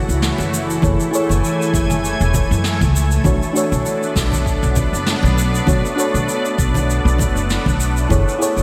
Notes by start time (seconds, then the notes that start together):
Already playing: E3 A3 E4 F#4 G#4 A4 C#5
0.09 C#2, shaker
0.22 snare, shaker
0.38 F#1, high conga, shaker
0.54 shaker
0.70 shaker
0.82 F#1 E4 G#4 A4 C#5 G#5, kick, high conga, shaker
1.00 shaker
1.11 E4 G#4 A4 C#5, shaker
1.29 F#1, high conga, shaker
1.44 shaker
1.62 shaker
1.74 F#1, kick, shaker
1.90 high conga, low conga, shaker
2.05 shaker
2.21 E1, shaker
2.34 kick, high conga, low conga, shaker
2.51 F#2, shaker
2.64 snare, shaker
2.81 C#2, kick, high conga, shaker
2.96 shaker
3.11 shaker
3.24 B1 B3 D4 F#4 A4 C#5, kick, high conga, shaker
3.42 shaker
3.53 D4 F#4 A4, shaker
3.57 C#5
3.72 B1, high conga, shaker
3.86 shaker
4.03 shaker
4.16 B1, kick, snare, shaker
4.32 high conga, low conga, shaker
4.46 kick, shaker
4.63 B1, shaker
4.76 kick, high conga, low conga, shaker
4.93 F#1, shaker
5.06 snare, shaker
5.23 B1, high conga, shaker
5.38 shaker
5.55 shaker
5.67 B1 D4 F#4 A4 C#5, kick, high conga, shaker
5.85 shaker
5.96 D4 F#4 A4 C#5, shaker
6.14 B1, high conga, shaker
6.29 shaker
6.45 shaker
6.59 B1, kick, shaker
6.74 high conga, low conga, shaker
6.90 shaker
7.05 B1, shaker
7.18 kick, high conga, low conga, shaker
7.35 F#1, shaker
7.50 snare, shaker
7.66 B1, kick, high conga, shaker
7.80 shaker
7.97 shaker
8.09 F#1 E3 A3 E4 F#4 G#4 A4 C#5, kick, high conga, shaker
8.28 shaker
8.39 E4 G#4 A4 C#5, shaker
8.56 F#1, high conga, shaker